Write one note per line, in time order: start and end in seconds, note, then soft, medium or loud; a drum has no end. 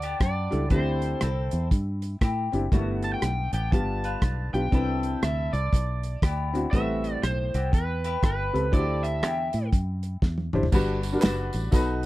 0.00 0.14 D2 medium
0.00 0.68 B3 medium
0.00 0.68 D4 medium
0.00 0.72 G4 medium
0.00 0.17 D5 medium
0.00 closed hi-hat medium
0.20 0.47 F#2 medium
0.20 0.71 D5 medium
0.20 kick medium
0.20 cross-stick loud
0.20 closed hi-hat medium
0.51 0.69 C#2 medium
0.51 0.61 G3 medium
0.51 0.62 D4 medium
0.51 0.62 E4 medium
0.51 0.62 A4 medium
0.51 cross-stick soft
0.51 closed hi-hat medium
0.70 1.14 D2 medium
0.70 1.48 D3 medium
0.70 1.24 C4 medium
0.70 1.20 C4 medium
0.70 1.25 D4 medium
0.70 1.25 E4 medium
0.70 1.20 E4 medium
0.70 1.25 G4 medium
0.70 1.18 A4 medium
0.70 1.68 C5 medium
0.70 kick medium
0.70 closed hi-hat medium
1.02 closed hi-hat medium
1.21 1.48 C2 medium
1.21 2.18 C4 medium
1.21 2.18 E4 medium
1.21 1.68 A4 medium
1.21 cross-stick medium
1.21 closed hi-hat medium
1.51 1.69 E2 medium
1.51 closed hi-hat medium
1.71 2.14 G2 medium
1.71 kick loud
1.71 closed hi-hat medium
2.02 closed hi-hat medium
2.21 2.48 A2 medium
2.21 2.69 C4 medium
2.21 2.69 E4 medium
2.21 2.72 G4 medium
2.21 kick medium
2.21 cross-stick loud
2.21 closed hi-hat medium
2.52 2.69 F#1 medium
2.52 2.63 C4 medium
2.52 2.63 D4 medium
2.52 2.63 E4 medium
2.52 2.64 G4 medium
2.52 cross-stick soft
2.52 closed hi-hat medium
2.72 3.15 G1 medium
2.72 3.49 G2 medium
2.72 3.26 G3 medium
2.72 3.25 A3 medium
2.72 3.52 A3 soft
2.72 2.79 A#3 medium
2.72 3.52 B3 medium
2.72 3.26 E4 medium
2.72 3.19 F#4 medium
2.72 kick medium
2.72 closed hi-hat medium
2.78 3.29 B3 medium
3.02 3.13 A5 medium
3.02 closed hi-hat medium
3.14 3.53 G5 medium
3.22 3.49 B1 medium
3.22 cross-stick medium
3.22 closed hi-hat medium
3.53 3.69 A1 medium
3.53 4.05 B3 medium
3.53 4.04 D4 soft
3.53 4.04 G4 medium
3.53 3.73 G5 medium
3.53 closed hi-hat medium
3.71 4.15 G1 medium
3.71 4.49 G2 medium
3.71 4.34 B3 medium
3.71 4.34 D4 medium
3.71 4.35 F4 medium
3.71 4.35 G4 medium
3.71 4.53 A5 medium
3.71 kick medium
3.71 closed hi-hat medium
4.04 4.69 D4 medium
4.04 4.69 F4 medium
4.04 4.74 B4 loud
4.04 closed hi-hat medium
4.22 4.49 B1 medium
4.22 kick medium
4.22 cross-stick loud
4.22 closed hi-hat medium
4.53 4.70 B1 medium
4.53 4.63 B3 medium
4.53 4.64 D4 medium
4.53 4.64 F4 medium
4.53 4.64 G4 medium
4.53 5.25 G5 medium
4.53 cross-stick soft
4.53 closed hi-hat soft
4.71 5.15 C2 medium
4.71 5.49 C3 medium
4.71 5.25 C4 medium
4.71 5.26 D4 medium
4.71 5.22 D4 medium
4.71 5.26 E4 medium
4.71 5.22 E4 medium
4.71 5.22 A4 medium
4.71 5.26 B4 medium
4.71 kick medium
4.71 closed hi-hat medium
5.03 closed hi-hat medium
5.22 5.49 D2 medium
5.22 6.19 D4 soft
5.22 6.19 E4 medium
5.22 5.69 A4 medium
5.22 5.52 E5 medium
5.22 cross-stick loud
5.22 closed hi-hat medium
5.53 5.69 C2 medium
5.53 6.49 D5 medium
5.53 closed hi-hat medium
5.73 6.15 B1 medium
5.73 kick medium
5.73 closed hi-hat medium
6.03 closed hi-hat medium
6.22 6.65 D2 medium
6.22 6.70 B3 medium
6.22 6.69 E4 medium
6.22 6.72 G4 medium
6.22 kick medium
6.22 cross-stick loud
6.22 closed hi-hat medium
6.53 6.63 C4 medium
6.53 6.64 D4 medium
6.53 6.64 E4 medium
6.53 6.64 F#4 medium
6.53 cross-stick soft
6.53 closed hi-hat medium
6.71 7.15 A1 medium
6.71 7.50 A2 medium
6.71 7.26 G3 medium
6.71 7.55 A3 medium
6.71 7.26 C4 medium
6.71 7.53 C4 medium
6.71 7.19 F#4 medium
6.71 7.27 A4 medium
6.71 7.27 B4 medium
6.71 7.13 E5 loud
6.71 kick medium
6.71 closed hi-hat medium
7.04 closed hi-hat medium
7.13 7.23 D5 loud
7.23 7.49 B1 medium
7.23 7.74 C5 medium
7.23 cross-stick medium
7.23 closed hi-hat medium
7.54 7.70 C2 medium
7.54 8.50 B3 medium
7.54 8.50 C4 medium
7.54 8.01 G4 medium
7.54 cross-stick soft
7.54 closed hi-hat medium
7.73 8.15 E2 medium
7.73 8.25 B4 medium
7.73 kick loud
7.73 closed hi-hat medium
8.04 8.70 E4 medium
8.04 8.69 G4 medium
8.04 8.74 B4 loud
8.04 closed hi-hat medium
8.23 8.49 G1 medium
8.23 8.76 B4 medium
8.23 kick medium
8.23 cross-stick loud
8.23 closed hi-hat medium
8.53 8.70 C#2 medium
8.53 8.63 C4 medium
8.53 8.64 G4 medium
8.53 8.64 A4 medium
8.53 8.64 B4 medium
8.53 cross-stick soft
8.53 closed hi-hat medium
8.72 9.23 D2 medium
8.72 9.49 D3 medium
8.72 9.22 C4 medium
8.72 9.26 D4 medium
8.72 9.26 E4 medium
8.72 9.22 E4 medium
8.72 8.80 F#4 medium
8.72 9.25 A4 medium
8.72 9.26 C5 medium
8.72 9.05 D5 medium
8.72 kick medium
8.72 closed hi-hat medium
8.79 9.29 G4 medium
9.03 9.68 E5 medium
9.03 closed hi-hat medium
9.23 9.49 E2 medium
9.23 10.19 C4 soft
9.23 10.19 E4 soft
9.23 9.70 G4 medium
9.23 cross-stick medium
9.23 closed hi-hat medium
9.53 9.70 A2 medium
9.53 closed hi-hat medium
9.73 10.15 F#2 medium
9.73 kick loud
9.73 closed hi-hat medium
10.03 closed hi-hat medium
10.22 10.49 E2 medium
10.22 kick medium
10.22 snare soft
10.38 high tom medium
10.53 10.70 F#1 medium
10.53 10.63 D4 medium
10.53 10.63 E4 medium
10.53 10.64 G4 medium
10.53 10.64 C5 medium
10.53 mid tom medium
10.63 floor tom medium
10.72 11.15 G1 medium
10.72 11.49 G2 medium
10.72 10.97 D4 medium
10.72 11.22 D4 medium
10.72 10.97 F#4 medium
10.72 11.22 F#4 medium
10.72 10.97 G4 medium
10.72 10.97 B4 medium
10.72 11.22 B4 medium
10.72 kick medium
10.72 crash medium
10.72 tambourine medium
11.03 closed hi-hat medium
11.03 tambourine medium
11.12 11.65 G3 medium
11.12 11.65 D4 medium
11.12 11.65 F#4 medium
11.12 11.18 A#4 medium
11.20 11.49 F#1 medium
11.20 11.69 F#4 medium
11.20 11.68 B4 medium
11.20 11.69 B4 medium
11.20 snare loud
11.20 clap medium
11.20 closed hi-hat medium
11.20 tambourine medium
11.24 11.75 D5 medium
11.53 11.70 A1 medium
11.53 closed hi-hat medium
11.53 tambourine medium
11.71 12.06 B1 medium
11.71 12.06 B2 medium
11.71 12.06 D#4 medium
11.71 12.06 F#4 medium
11.71 12.06 A4 medium
11.71 12.06 B4 medium
11.71 kick loud
11.71 closed hi-hat medium
11.71 tambourine medium
11.75 12.06 B4 loud